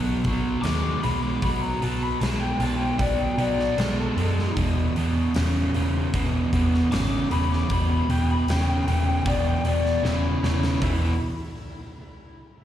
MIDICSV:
0, 0, Header, 1, 5, 480
1, 0, Start_track
1, 0, Tempo, 781250
1, 884, Time_signature, 4, 2, 24, 8
1, 7767, End_track
2, 0, Start_track
2, 0, Title_t, "Lead electric guitar"
2, 0, Program_c, 0, 29
2, 380, Note_on_c, 0, 86, 97
2, 624, Note_off_c, 0, 86, 0
2, 635, Note_on_c, 0, 83, 85
2, 750, Note_off_c, 0, 83, 0
2, 750, Note_on_c, 0, 86, 78
2, 879, Note_off_c, 0, 86, 0
2, 879, Note_on_c, 0, 83, 92
2, 988, Note_off_c, 0, 83, 0
2, 991, Note_on_c, 0, 82, 93
2, 1114, Note_off_c, 0, 82, 0
2, 1130, Note_on_c, 0, 81, 89
2, 1244, Note_off_c, 0, 81, 0
2, 1244, Note_on_c, 0, 83, 86
2, 1355, Note_off_c, 0, 83, 0
2, 1358, Note_on_c, 0, 81, 93
2, 1474, Note_on_c, 0, 79, 79
2, 1478, Note_off_c, 0, 81, 0
2, 1596, Note_off_c, 0, 79, 0
2, 1613, Note_on_c, 0, 81, 77
2, 1716, Note_on_c, 0, 79, 91
2, 1726, Note_off_c, 0, 81, 0
2, 1838, Note_off_c, 0, 79, 0
2, 1848, Note_on_c, 0, 74, 93
2, 1964, Note_off_c, 0, 74, 0
2, 1967, Note_on_c, 0, 79, 89
2, 2084, Note_off_c, 0, 79, 0
2, 2086, Note_on_c, 0, 74, 79
2, 2320, Note_off_c, 0, 74, 0
2, 2325, Note_on_c, 0, 69, 105
2, 2792, Note_off_c, 0, 69, 0
2, 4253, Note_on_c, 0, 86, 101
2, 4484, Note_off_c, 0, 86, 0
2, 4500, Note_on_c, 0, 83, 88
2, 4624, Note_off_c, 0, 83, 0
2, 4624, Note_on_c, 0, 86, 80
2, 4739, Note_off_c, 0, 86, 0
2, 4739, Note_on_c, 0, 83, 83
2, 4851, Note_off_c, 0, 83, 0
2, 4858, Note_on_c, 0, 83, 89
2, 4970, Note_off_c, 0, 83, 0
2, 4977, Note_on_c, 0, 79, 86
2, 5090, Note_off_c, 0, 79, 0
2, 5103, Note_on_c, 0, 83, 81
2, 5212, Note_off_c, 0, 83, 0
2, 5214, Note_on_c, 0, 79, 89
2, 5328, Note_off_c, 0, 79, 0
2, 5339, Note_on_c, 0, 79, 84
2, 5446, Note_off_c, 0, 79, 0
2, 5454, Note_on_c, 0, 79, 98
2, 5568, Note_off_c, 0, 79, 0
2, 5581, Note_on_c, 0, 79, 87
2, 5691, Note_off_c, 0, 79, 0
2, 5699, Note_on_c, 0, 74, 91
2, 5810, Note_off_c, 0, 74, 0
2, 5819, Note_on_c, 0, 79, 76
2, 5930, Note_off_c, 0, 79, 0
2, 5934, Note_on_c, 0, 74, 80
2, 6164, Note_off_c, 0, 74, 0
2, 6164, Note_on_c, 0, 64, 99
2, 6631, Note_off_c, 0, 64, 0
2, 6650, Note_on_c, 0, 64, 83
2, 6871, Note_off_c, 0, 64, 0
2, 7767, End_track
3, 0, Start_track
3, 0, Title_t, "Overdriven electric guitar"
3, 0, Program_c, 1, 29
3, 0, Note_on_c, 1, 47, 78
3, 0, Note_on_c, 1, 54, 78
3, 134, Note_off_c, 1, 47, 0
3, 137, Note_off_c, 1, 54, 0
3, 163, Note_on_c, 1, 47, 78
3, 166, Note_on_c, 1, 54, 82
3, 379, Note_off_c, 1, 47, 0
3, 380, Note_off_c, 1, 54, 0
3, 395, Note_on_c, 1, 47, 79
3, 396, Note_on_c, 1, 56, 84
3, 615, Note_off_c, 1, 47, 0
3, 616, Note_off_c, 1, 56, 0
3, 635, Note_on_c, 1, 47, 77
3, 636, Note_on_c, 1, 56, 87
3, 856, Note_off_c, 1, 47, 0
3, 856, Note_off_c, 1, 56, 0
3, 875, Note_on_c, 1, 47, 79
3, 881, Note_on_c, 1, 54, 94
3, 1096, Note_off_c, 1, 47, 0
3, 1099, Note_off_c, 1, 54, 0
3, 1114, Note_on_c, 1, 47, 75
3, 1121, Note_on_c, 1, 54, 80
3, 1336, Note_off_c, 1, 47, 0
3, 1339, Note_off_c, 1, 54, 0
3, 1360, Note_on_c, 1, 47, 81
3, 1365, Note_on_c, 1, 56, 92
3, 1579, Note_off_c, 1, 47, 0
3, 1581, Note_off_c, 1, 56, 0
3, 1598, Note_on_c, 1, 47, 77
3, 1599, Note_on_c, 1, 56, 84
3, 1818, Note_off_c, 1, 47, 0
3, 1819, Note_off_c, 1, 56, 0
3, 1831, Note_on_c, 1, 47, 82
3, 1833, Note_on_c, 1, 54, 83
3, 2055, Note_off_c, 1, 47, 0
3, 2056, Note_off_c, 1, 54, 0
3, 2074, Note_on_c, 1, 47, 80
3, 2079, Note_on_c, 1, 54, 83
3, 2297, Note_off_c, 1, 47, 0
3, 2300, Note_off_c, 1, 54, 0
3, 2321, Note_on_c, 1, 47, 77
3, 2327, Note_on_c, 1, 56, 92
3, 2540, Note_off_c, 1, 47, 0
3, 2544, Note_off_c, 1, 56, 0
3, 2560, Note_on_c, 1, 47, 73
3, 2561, Note_on_c, 1, 56, 81
3, 2780, Note_off_c, 1, 47, 0
3, 2781, Note_off_c, 1, 56, 0
3, 2805, Note_on_c, 1, 40, 93
3, 2813, Note_on_c, 1, 47, 101
3, 3023, Note_off_c, 1, 40, 0
3, 3027, Note_off_c, 1, 47, 0
3, 3044, Note_on_c, 1, 40, 73
3, 3049, Note_on_c, 1, 47, 84
3, 3263, Note_off_c, 1, 40, 0
3, 3265, Note_off_c, 1, 47, 0
3, 3286, Note_on_c, 1, 40, 86
3, 3288, Note_on_c, 1, 49, 82
3, 3504, Note_off_c, 1, 40, 0
3, 3505, Note_off_c, 1, 49, 0
3, 3528, Note_on_c, 1, 40, 65
3, 3532, Note_on_c, 1, 49, 82
3, 3745, Note_off_c, 1, 40, 0
3, 3746, Note_off_c, 1, 49, 0
3, 3773, Note_on_c, 1, 40, 82
3, 3774, Note_on_c, 1, 47, 88
3, 3987, Note_off_c, 1, 40, 0
3, 3988, Note_off_c, 1, 47, 0
3, 4014, Note_on_c, 1, 40, 79
3, 4017, Note_on_c, 1, 47, 83
3, 4228, Note_off_c, 1, 40, 0
3, 4229, Note_off_c, 1, 47, 0
3, 4251, Note_on_c, 1, 40, 78
3, 4255, Note_on_c, 1, 49, 83
3, 4466, Note_off_c, 1, 40, 0
3, 4468, Note_off_c, 1, 49, 0
3, 4491, Note_on_c, 1, 40, 74
3, 4492, Note_on_c, 1, 49, 83
3, 4706, Note_off_c, 1, 40, 0
3, 4707, Note_off_c, 1, 49, 0
3, 4730, Note_on_c, 1, 40, 80
3, 4734, Note_on_c, 1, 47, 97
3, 4945, Note_off_c, 1, 40, 0
3, 4948, Note_off_c, 1, 47, 0
3, 4969, Note_on_c, 1, 40, 72
3, 4973, Note_on_c, 1, 47, 77
3, 5185, Note_off_c, 1, 40, 0
3, 5187, Note_off_c, 1, 47, 0
3, 5219, Note_on_c, 1, 40, 77
3, 5221, Note_on_c, 1, 49, 93
3, 5430, Note_off_c, 1, 40, 0
3, 5431, Note_off_c, 1, 49, 0
3, 5452, Note_on_c, 1, 40, 75
3, 5454, Note_on_c, 1, 49, 77
3, 5666, Note_off_c, 1, 40, 0
3, 5667, Note_off_c, 1, 49, 0
3, 5684, Note_on_c, 1, 40, 81
3, 5687, Note_on_c, 1, 47, 84
3, 5902, Note_off_c, 1, 40, 0
3, 5904, Note_off_c, 1, 47, 0
3, 5925, Note_on_c, 1, 40, 78
3, 5929, Note_on_c, 1, 47, 85
3, 6142, Note_off_c, 1, 40, 0
3, 6144, Note_off_c, 1, 47, 0
3, 6164, Note_on_c, 1, 40, 84
3, 6166, Note_on_c, 1, 49, 92
3, 6382, Note_off_c, 1, 40, 0
3, 6383, Note_off_c, 1, 49, 0
3, 6408, Note_on_c, 1, 40, 78
3, 6414, Note_on_c, 1, 49, 74
3, 6624, Note_off_c, 1, 40, 0
3, 6627, Note_off_c, 1, 49, 0
3, 6641, Note_on_c, 1, 40, 85
3, 6647, Note_on_c, 1, 47, 99
3, 6652, Note_on_c, 1, 52, 99
3, 6836, Note_off_c, 1, 40, 0
3, 6839, Note_off_c, 1, 47, 0
3, 6841, Note_off_c, 1, 52, 0
3, 7767, End_track
4, 0, Start_track
4, 0, Title_t, "Picked electric bass"
4, 0, Program_c, 2, 34
4, 0, Note_on_c, 2, 35, 84
4, 100, Note_off_c, 2, 35, 0
4, 149, Note_on_c, 2, 35, 93
4, 338, Note_off_c, 2, 35, 0
4, 396, Note_on_c, 2, 39, 89
4, 583, Note_off_c, 2, 39, 0
4, 644, Note_on_c, 2, 35, 80
4, 828, Note_off_c, 2, 35, 0
4, 879, Note_on_c, 2, 35, 94
4, 1065, Note_off_c, 2, 35, 0
4, 1122, Note_on_c, 2, 35, 76
4, 1307, Note_off_c, 2, 35, 0
4, 1359, Note_on_c, 2, 35, 85
4, 1545, Note_off_c, 2, 35, 0
4, 1595, Note_on_c, 2, 35, 86
4, 1783, Note_off_c, 2, 35, 0
4, 1842, Note_on_c, 2, 35, 91
4, 2028, Note_off_c, 2, 35, 0
4, 2073, Note_on_c, 2, 35, 88
4, 2263, Note_off_c, 2, 35, 0
4, 2325, Note_on_c, 2, 35, 93
4, 2510, Note_off_c, 2, 35, 0
4, 2557, Note_on_c, 2, 42, 87
4, 2745, Note_off_c, 2, 42, 0
4, 2807, Note_on_c, 2, 28, 90
4, 2991, Note_off_c, 2, 28, 0
4, 3053, Note_on_c, 2, 40, 81
4, 3235, Note_off_c, 2, 40, 0
4, 3294, Note_on_c, 2, 28, 91
4, 3476, Note_off_c, 2, 28, 0
4, 3533, Note_on_c, 2, 28, 86
4, 3715, Note_off_c, 2, 28, 0
4, 3772, Note_on_c, 2, 28, 91
4, 3955, Note_off_c, 2, 28, 0
4, 4008, Note_on_c, 2, 28, 92
4, 4192, Note_off_c, 2, 28, 0
4, 4261, Note_on_c, 2, 32, 92
4, 4440, Note_off_c, 2, 32, 0
4, 4493, Note_on_c, 2, 28, 88
4, 4675, Note_off_c, 2, 28, 0
4, 4729, Note_on_c, 2, 28, 94
4, 4913, Note_off_c, 2, 28, 0
4, 4972, Note_on_c, 2, 28, 81
4, 5154, Note_off_c, 2, 28, 0
4, 5206, Note_on_c, 2, 28, 91
4, 5391, Note_off_c, 2, 28, 0
4, 5456, Note_on_c, 2, 28, 86
4, 5637, Note_off_c, 2, 28, 0
4, 5687, Note_on_c, 2, 28, 91
4, 5871, Note_off_c, 2, 28, 0
4, 5926, Note_on_c, 2, 28, 85
4, 6110, Note_off_c, 2, 28, 0
4, 6163, Note_on_c, 2, 28, 89
4, 6348, Note_off_c, 2, 28, 0
4, 6410, Note_on_c, 2, 28, 88
4, 6593, Note_off_c, 2, 28, 0
4, 6646, Note_on_c, 2, 28, 91
4, 6869, Note_off_c, 2, 28, 0
4, 7767, End_track
5, 0, Start_track
5, 0, Title_t, "Drums"
5, 149, Note_on_c, 9, 46, 49
5, 152, Note_on_c, 9, 36, 76
5, 211, Note_off_c, 9, 46, 0
5, 214, Note_off_c, 9, 36, 0
5, 391, Note_on_c, 9, 46, 80
5, 402, Note_on_c, 9, 38, 118
5, 452, Note_off_c, 9, 46, 0
5, 463, Note_off_c, 9, 38, 0
5, 635, Note_on_c, 9, 46, 59
5, 697, Note_off_c, 9, 46, 0
5, 874, Note_on_c, 9, 36, 101
5, 876, Note_on_c, 9, 46, 72
5, 936, Note_off_c, 9, 36, 0
5, 937, Note_off_c, 9, 46, 0
5, 1119, Note_on_c, 9, 46, 56
5, 1181, Note_off_c, 9, 46, 0
5, 1361, Note_on_c, 9, 46, 77
5, 1372, Note_on_c, 9, 38, 108
5, 1422, Note_off_c, 9, 46, 0
5, 1433, Note_off_c, 9, 38, 0
5, 1598, Note_on_c, 9, 46, 61
5, 1659, Note_off_c, 9, 46, 0
5, 1839, Note_on_c, 9, 36, 108
5, 1840, Note_on_c, 9, 46, 81
5, 1900, Note_off_c, 9, 36, 0
5, 1902, Note_off_c, 9, 46, 0
5, 2080, Note_on_c, 9, 46, 55
5, 2141, Note_off_c, 9, 46, 0
5, 2210, Note_on_c, 9, 38, 30
5, 2272, Note_off_c, 9, 38, 0
5, 2323, Note_on_c, 9, 46, 81
5, 2334, Note_on_c, 9, 38, 113
5, 2384, Note_off_c, 9, 46, 0
5, 2396, Note_off_c, 9, 38, 0
5, 2566, Note_on_c, 9, 46, 55
5, 2628, Note_off_c, 9, 46, 0
5, 2698, Note_on_c, 9, 38, 32
5, 2759, Note_off_c, 9, 38, 0
5, 2807, Note_on_c, 9, 36, 97
5, 2807, Note_on_c, 9, 46, 68
5, 2868, Note_off_c, 9, 36, 0
5, 2869, Note_off_c, 9, 46, 0
5, 3048, Note_on_c, 9, 46, 53
5, 3109, Note_off_c, 9, 46, 0
5, 3284, Note_on_c, 9, 46, 77
5, 3295, Note_on_c, 9, 38, 111
5, 3345, Note_off_c, 9, 46, 0
5, 3356, Note_off_c, 9, 38, 0
5, 3530, Note_on_c, 9, 46, 56
5, 3591, Note_off_c, 9, 46, 0
5, 3771, Note_on_c, 9, 36, 108
5, 3771, Note_on_c, 9, 46, 78
5, 3833, Note_off_c, 9, 36, 0
5, 3833, Note_off_c, 9, 46, 0
5, 4012, Note_on_c, 9, 36, 72
5, 4014, Note_on_c, 9, 46, 53
5, 4073, Note_off_c, 9, 36, 0
5, 4075, Note_off_c, 9, 46, 0
5, 4144, Note_on_c, 9, 38, 31
5, 4206, Note_off_c, 9, 38, 0
5, 4252, Note_on_c, 9, 46, 77
5, 4263, Note_on_c, 9, 38, 116
5, 4313, Note_off_c, 9, 46, 0
5, 4324, Note_off_c, 9, 38, 0
5, 4492, Note_on_c, 9, 46, 55
5, 4554, Note_off_c, 9, 46, 0
5, 4624, Note_on_c, 9, 38, 31
5, 4686, Note_off_c, 9, 38, 0
5, 4729, Note_on_c, 9, 46, 72
5, 4731, Note_on_c, 9, 36, 96
5, 4790, Note_off_c, 9, 46, 0
5, 4792, Note_off_c, 9, 36, 0
5, 4975, Note_on_c, 9, 46, 54
5, 5036, Note_off_c, 9, 46, 0
5, 5212, Note_on_c, 9, 46, 78
5, 5223, Note_on_c, 9, 38, 112
5, 5274, Note_off_c, 9, 46, 0
5, 5285, Note_off_c, 9, 38, 0
5, 5455, Note_on_c, 9, 46, 63
5, 5516, Note_off_c, 9, 46, 0
5, 5688, Note_on_c, 9, 36, 116
5, 5689, Note_on_c, 9, 46, 81
5, 5750, Note_off_c, 9, 36, 0
5, 5750, Note_off_c, 9, 46, 0
5, 5927, Note_on_c, 9, 46, 61
5, 5989, Note_off_c, 9, 46, 0
5, 6057, Note_on_c, 9, 38, 32
5, 6118, Note_off_c, 9, 38, 0
5, 6174, Note_on_c, 9, 38, 63
5, 6235, Note_off_c, 9, 38, 0
5, 6416, Note_on_c, 9, 38, 86
5, 6477, Note_off_c, 9, 38, 0
5, 6534, Note_on_c, 9, 38, 87
5, 6595, Note_off_c, 9, 38, 0
5, 6646, Note_on_c, 9, 36, 94
5, 6648, Note_on_c, 9, 43, 87
5, 6648, Note_on_c, 9, 46, 71
5, 6708, Note_off_c, 9, 36, 0
5, 6710, Note_off_c, 9, 43, 0
5, 6710, Note_off_c, 9, 46, 0
5, 7767, End_track
0, 0, End_of_file